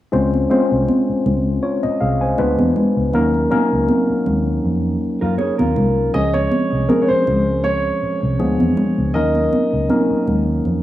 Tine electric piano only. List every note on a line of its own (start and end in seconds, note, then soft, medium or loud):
0.12 0.37 G#3 medium
0.12 0.37 C4 medium
0.12 0.37 C#4 medium
0.12 0.38 F4 medium
0.12 0.38 C5 medium
0.50 1.50 G#3 medium
0.50 1.50 C4 medium
0.50 1.51 C#4 medium
0.50 1.25 F4 medium
0.50 1.26 C5 medium
1.63 1.82 F4 soft
1.63 1.82 C#5 medium
1.83 2.00 D#5 medium
2.01 2.20 G#4 medium
2.01 2.20 F5 medium
2.21 2.57 C5 medium
2.21 2.57 G#5 medium
2.38 2.99 G#3 medium
2.38 2.99 B3 medium
2.38 3.00 D4 medium
2.38 3.00 F4 medium
2.38 3.00 B4 medium
3.13 3.38 F#3 medium
3.13 3.38 A#3 medium
3.13 3.39 C#4 medium
3.13 3.39 D#4 medium
3.13 3.39 A#4 medium
3.50 4.51 F#3 medium
3.50 4.51 A#3 medium
3.50 4.51 C#4 medium
3.50 4.51 D#4 medium
3.50 4.51 A#4 medium
6.13 6.64 F3 medium
6.13 6.64 G#3 medium
6.13 6.64 C#4 medium
6.13 6.64 G#4 medium
6.88 7.89 F3 medium
6.88 7.89 G#3 medium
6.88 7.89 C4 medium
6.88 7.89 C#4 medium
6.88 7.89 G#4 medium
8.39 9.00 F3 medium
8.39 9.00 G#3 medium
8.39 9.00 B3 medium
8.39 9.01 D4 medium
8.39 9.01 G#4 medium
9.14 9.64 F#3 medium
9.14 9.64 A#3 medium
9.14 9.64 C#4 medium
9.14 9.65 D#4 medium
9.14 9.65 A#4 medium
9.89 10.83 F#3 medium
9.89 10.83 A#3 medium
9.89 10.83 C#4 medium
9.89 10.83 D#4 medium
9.89 10.83 A#4 medium